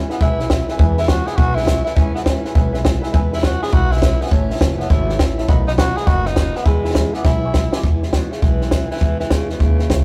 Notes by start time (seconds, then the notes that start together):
Already playing: C#4
0.09 E3 G#3 B3 E4 B4 E5 G#5, snare
0.19 B1 E2 B2 E3 G#3 B3 E4 B4 E5 G#5, kick, snare
0.38 E3 G#3 B3 E4 B4 E5 G#5, snare
0.49 E3 G#3 B3 E4 B4 E5 F#5, kick, snare, hi-hat pedal
0.68 E3 G#3 B3 E4 B4 E5 G#5, snare
0.77 E2 B2 E3 G#3 B3 E4 B4 E5 G#5, kick, snare
0.97 E3 G#3 B3 E4 B4 E5 G#5, snare
1.03 snare
1.07 E3 G#3 B3 E4 F#4 B4 E5 G#5, kick, snare, hi-hat pedal
1.25 E3 G#3 B3 E4 G#4 B4 E5 F#5, snare
1.36 B1 E2 B2 E3 G#3 B3 E4 F#4 B4 E5 G#5, kick, snare
1.55 E3 G#3 B3 E4 B4 E5 G#5, snare
1.62 snare
1.66 E3 G#3 B3 E4 B4 E5 G#5, kick, snare, hi-hat pedal
1.84 E3 G#3 B3 E4 B4 E5 G#5, snare
1.95 E2 B2 E3 G#3 B3 C#4 E4 B4 E5 G#5, kick, snare
2.14 E3 G#3 B3 E4 B4 E5 G#5, snare
2.24 E3 G#3 B3 C#4 E4 B4 E5 G#5, kick, snare, hi-hat pedal
2.44 E3 G#3 B3 E4 B4 E5 G#5, snare
2.55 B1 E2 B2 E3 G#3 B3 E4 B4 E5 G#5, kick, snare
2.72 E3 G#3 B3 E4 B4 E5 G#5, snare
2.83 E3 G#3 B3 E4 B4 E5 G#5, kick, snare, hi-hat pedal
3.01 G#3 B3 E4 B4 E5 G#5, snare
3.05 E3
3.12 E2 B2 E3 G#3 B3 E4 B4 E5 G#5, kick, snare
3.32 E3 G#3 B3 E4 B4 E5 G#5, snare
3.38 snare
3.42 E3 G#3 B3 E4 F#4 B4 E5 G#5, kick, snare, hi-hat pedal
3.61 E3 G#3 B3 E4 G#4 B4 E5 G#5, snare
3.68 B4, snare
3.72 B1 E2 B2 E3 G#3 B3 E4 F#4 E5 B5, kick, snare
3.91 E3 G#3 B3 E4 B4 E5 G#5, snare
3.97 snare
4.01 E3 G#3 B3 E4 B4 E5 B5, kick, snare, hi-hat pedal
4.20 E3 G#3 B3 E4 B4 E5 G#5, snare
4.26 snare
4.30 A1 A2 E3 A3 C#4 E4 C#5 E5 A5, kick, snare
4.50 A3 C#4 E4 C#5 E5 A5, snare
4.56 E3, snare
4.60 F#1 A3 C#4 E4 C#5, kick, snare, hi-hat pedal
4.78 A3 B3 C#4 E4 C#5 E5 A5, snare
4.88 G#1 A2 E3 A3 C#4 E4 C#5 E5, kick, snare
4.93 A5
5.07 A3 C#4 E4 C#5 E5 A5, snare
5.18 A1 E3 A3 C#4 E4 C#5 E5 A5, kick, snare, hi-hat pedal
5.38 A3 C#4 E4 C#5 E5 A5, snare
5.47 B1 B2 D#3 A3 B3 F#4 D#5 F#5 B5, kick, snare
5.66 A3 B3 D#4 F#4 D#5 F#5 B5, snare
5.77 D#3 A3 B3 F#4 D#5 F#5 B5, kick, snare, hi-hat pedal
5.96 A3 B3 F#4 G#4 D#5 F#5 B5, snare
6.05 F#1 B2 D#3 A3 B3 F#4 D#5 F#5 B5, kick, snare
6.24 A3 B3 D#4 F#4 D#5 F#5 B5, snare
6.36 A3 B3 F#5 B5, kick, snare, hi-hat pedal
6.54 A3 B3 F#4 D#5 F#5 B5, snare
6.64 E2 B2 E3 G#3 B3 E4 E5 G#5 B5, kick, snare
6.83 E3 G#3 B3 E4 E5 G#5 B5, snare
6.90 E3, snare
6.94 G#3 B3 E4 E5 G#5 B5, kick, snare, hi-hat pedal
7.12 E3 G#3 B3 E4 E5 G#5 D6, snare
7.24 B1 E2 B2 E3 G#3 B3 E4 E5 G#5 B5, kick, snare
7.42 E3 G#3 B3 E4 E5 G#5 C#6
7.53 E3 G#3 B3 E4 E5 B5, kick, snare, hi-hat pedal
7.71 E3 G#3 B3 E4 E5 G#5 D6, snare
7.82 E2 B2 E3 G#3 B3 E4, kick, snare
8.01 E3 G#3 B3 E4, snare
8.12 B2 E3 G#3 B3 E4, kick, snare, hi-hat pedal
8.31 C#3 E3 G#3 B3 E4, snare
8.42 B1 E2 B2 E3 G#3 B3 E4, kick, snare
8.61 E3 G#3 B3 E4, snare
8.71 E3 G#3 B3 E4, kick, snare, hi-hat pedal
8.90 E3 G#3 B3 E4, snare
8.96 snare
9.01 E2 B2 E3 G#3 B3 E4, kick, snare
9.20 E3 G#3 B3 E4, snare
9.30 E2 C#3 E3 G#3 B3 E4, kick, snare, hi-hat pedal
9.49 B2 E3 G#3 B3 E4, snare
9.59 D#2 E2 B2 C#3 E3 G#3 B3 E4, kick, snare
9.78 E3 G#3 B3 E4, snare
9.89 C#2 E3 G#3 B3 E4, kick, snare, hi-hat pedal